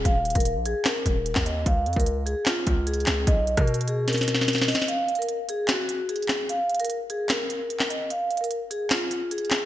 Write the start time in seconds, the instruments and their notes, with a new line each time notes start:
0.05 808-style bass D#1, vibraphone F5, kick, closed hi-hat
0.25 closed hi-hat
0.30 closed hi-hat
0.35 808-style bass D#1, vibraphone A#4, kick, closed hi-hat
0.40 closed hi-hat
0.45 closed hi-hat
0.55 808-style bass A#1
0.66 vibraphone G#4, closed hi-hat
0.85 vibraphone A#4, snare, clap, closed hi-hat
1.06 808-style bass D#1, kick, closed hi-hat
1.26 closed hi-hat
1.35 808-style bass D#2, kick, snare, clap
1.46 vibraphone D#5, closed hi-hat
1.66 808-style bass C#2, vibraphone F5, kick, closed hi-hat
1.86 808-style bass F2, closed hi-hat
1.93 808-style bass C#2, vibraphone A#4, kick, closed hi-hat
2.00 closed hi-hat
2.06 closed hi-hat
2.26 vibraphone G#4, closed hi-hat
2.46 vibraphone F4, snare, clap, closed hi-hat
2.67 808-style bass C#2, kick, closed hi-hat
2.87 vibraphone G#4, closed hi-hat
2.94 closed hi-hat
3.00 closed hi-hat
3.06 808-style bass C#2, snare, clap, closed hi-hat
3.27 808-style bass B1, vibraphone D#5, kick, closed hi-hat
3.47 closed hi-hat
3.57 808-style bass B2, vibraphone A#4, kick, cross-stick, closed hi-hat
3.67 closed hi-hat
3.74 closed hi-hat
3.81 closed hi-hat
3.88 vibraphone G#4, closed hi-hat
4.08 vibraphone A#4, snare, closed hi-hat
4.13 snare, closed hi-hat
4.18 snare, closed hi-hat
4.23 closed hi-hat
4.28 snare, closed hi-hat
4.35 snare
4.41 snare
4.48 snare, closed hi-hat
4.53 snare, closed hi-hat
4.58 snare, closed hi-hat
4.63 closed hi-hat
4.68 vibraphone D#5, snare, open hi-hat
4.75 snare
4.82 snare
4.88 vibraphone F5, closed hi-hat
5.08 closed hi-hat
5.15 vibraphone A#4, closed hi-hat
5.22 closed hi-hat
5.29 closed hi-hat
5.49 vibraphone G#4, closed hi-hat
5.68 vibraphone F#4, snare, clap, closed hi-hat
5.89 closed hi-hat
6.09 vibraphone G#4, closed hi-hat
6.16 closed hi-hat
6.22 closed hi-hat
6.28 snare, clap, closed hi-hat
6.49 vibraphone F5, closed hi-hat
6.70 closed hi-hat
6.75 closed hi-hat
6.80 vibraphone A#4, closed hi-hat
6.85 closed hi-hat
6.90 closed hi-hat
7.10 vibraphone G#4, closed hi-hat
7.29 vibraphone A#4, snare, clap, closed hi-hat
7.50 closed hi-hat
7.70 closed hi-hat
7.79 snare, clap
7.90 vibraphone D#5, closed hi-hat
8.10 vibraphone F5, closed hi-hat
8.31 closed hi-hat
8.37 vibraphone A#4, closed hi-hat
8.44 closed hi-hat
8.51 closed hi-hat
8.70 vibraphone G#4, closed hi-hat
8.90 vibraphone F4, snare, clap, closed hi-hat
9.11 closed hi-hat
9.31 vibraphone G#4, closed hi-hat
9.38 closed hi-hat
9.45 closed hi-hat
9.51 snare, clap, closed hi-hat